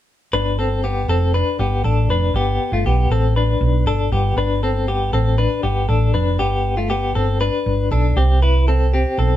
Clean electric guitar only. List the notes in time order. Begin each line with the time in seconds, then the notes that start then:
0.33 D4 B4
0.59 C4 A4
0.84 B3 G4
1.09 C4 A4
1.34 D4 B4
1.59 B3 G4
1.84 D4 A4
2.10 D4 B4
2.36 B3 G4
2.73 A3 F4
2.86 B3 G4
3.12 C4 A4
3.36 D4 B4
3.87 D4 A4
4.12 B3 G4
4.38 D4 B4
4.63 C4 A4
4.88 B3 G4
5.13 C4 A4
5.38 D4 B4
5.63 B3 G4
5.89 D4 A4
6.14 D4 B4
6.39 B3 G4
6.77 A3 F4
6.90 B3 G4
7.15 C4 A4
7.41 D4 B4
7.92 D4 A4
8.17 C4 G4
8.42 E4 B4
8.68 C4 A4
8.93 C4 G4
9.19 C4 A4